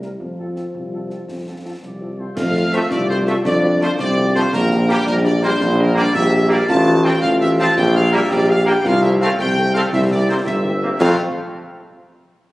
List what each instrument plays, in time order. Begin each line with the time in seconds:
Already playing: tuba C2
0.01 euphonium G3, french horn section G3 C4 E4, trumpet section A#4, snare
0.19 tuba F2, euphonium F3, concert bass drum
0.38 french horn section F3 C4 F4, trumpet section A4
0.56 french horn section F3 C4 F4, trumpet section A4, snare
0.74 tuba C2, concert bass drum
0.92 french horn section F3 C4 F4, trumpet section A4
1.10 french horn section F3 C4 F4, trumpet section A4, snare
1.29 tuba F2, concert bass drum, snare
1.46 french horn section F3 C4 F4, trumpet section A4
1.64 french horn section F3 C4 F4, trumpet section A4
1.83 tuba C2, trumpet section D5, concert bass drum, snare
2.00 french horn section F3 C4 F4, trumpet section A4
2.18 french horn section F3 C4 F4, trumpet section A4 C5
2.36 tuba F2, euphonium A3, trumpet section F5, concert bass drum, snare, crash
2.54 french horn section A3 C4 F4, snare
2.73 trombone section F3 A3, french horn section A3 C4 F4, trumpet section E5, snare
2.90 tuba C2, euphonium F4, trumpet section D5, concert bass drum, snare
3.09 french horn section A3 C4 F4, trumpet section C5
3.27 trombone section F3 A3, french horn section A3 C4 F4, trumpet section E5, snare
3.45 tuba F2, euphonium D4, trumpet section D5, concert bass drum, snare
3.63 french horn section A3 C4 F4
3.80 trombone section F3 A3, french horn section A3 C4 F4, trumpet section C5, snare
3.99 tuba C2, euphonium C4, trumpet section D5, concert bass drum, snare
4.17 french horn section A3 C4 F4
4.34 trombone section F3 A3, french horn section A3 C4 F4, trumpet section C5, snare
4.52 tuba A#1, euphonium A#3, trumpet section A#4, concert bass drum, snare, crash
4.70 french horn section A#3 D4 G4, snare
4.88 trombone section G3 A#3, french horn section A#3 D4 G4, trumpet section G4, snare
5.07 tuba A#1, euphonium D4, trumpet section A#4, concert bass drum, snare
5.25 french horn section A#3 D4 G4, trumpet section D5
5.42 trombone section G3 A#3, french horn section A#3 D4 G4, trumpet section C5, snare
5.61 tuba A#1, concert bass drum, snare
5.78 french horn section A#3 D4 G4, trumpet section A#4
5.95 trombone section G3 A#3, french horn section A#3 D4 G4, trumpet section D5, snare
6.14 tuba A#1, euphonium G4, trumpet section E5, concert bass drum, snare
6.33 french horn section A#3 D4 G4
6.49 trombone section G3 A#3, french horn section A#3 D4 G4, trumpet section D5, snare
6.68 tuba A1, euphonium F4, trumpet section A5, concert bass drum, snare, crash
6.86 french horn section C4 F4, snare
7.04 trombone section F3 C4, french horn section C4 F4, trumpet section G5, snare
7.22 tuba A1, euphonium F4, trumpet section F5, concert bass drum, snare
7.40 french horn section C4 F4, trumpet section E5
7.59 trombone section F3 C4, french horn section C4 F4, trumpet section A5, snare
7.76 tuba A#1, trumpet section G5, concert bass drum, snare
7.94 french horn section A#3 D4 G4, trumpet section F5
8.12 trombone section G3 A#3, french horn section A#3 D4 G4, trumpet section E5, snare
8.30 tuba A#1, euphonium G4, trumpet section D5, concert bass drum, snare
8.49 french horn section A#3 D4 G4, trumpet section F5
8.65 trombone section G3 A#3, french horn section A#3 D4 G4, trumpet section G5, snare
8.84 tuba C2, euphonium F4, trumpet section F5, concert bass drum, snare, crash
9.02 french horn section A3 C4 A4, trumpet section E5, snare
9.20 french horn section A3 C4 A4, trombone section A3 C4, trumpet section F5, snare
9.38 tuba C2, euphonium C4, trumpet section G5, concert bass drum, snare
9.56 french horn section A3 C4 A4
9.74 trombone section A3 C4, french horn section A3 C4 A4, trumpet section F5, snare
9.92 tuba C2, euphonium E4, trumpet section E5, concert bass drum, snare
10.10 french horn section A#3 C4 G4, trumpet section D5
10.28 trombone section A#3 C4, french horn section A#3 C4 G4, trumpet section C5
10.45 tuba G1, euphonium G4, trumpet section E5, concert bass drum, snare
10.64 french horn section A#3 C4 G4
10.82 french horn section A#3 C4 G4, trombone section A#3 C4
11.00 tuba F2, french horn section A3 C4 F4, trombone section A3 C4, trumpet section F5, concert bass drum, snare, crash